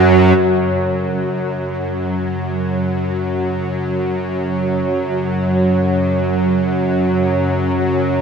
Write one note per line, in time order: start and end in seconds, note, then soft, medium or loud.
0.00 0.36 F#2 medium
0.00 8.21 C#3 medium
0.00 0.36 F#3 medium
0.00 8.21 F#3 medium
0.00 8.21 F#4 medium
0.00 0.40 B4 medium
0.37 8.21 F#2 medium
0.37 8.21 F#3 medium
3.06 8.21 C#5 medium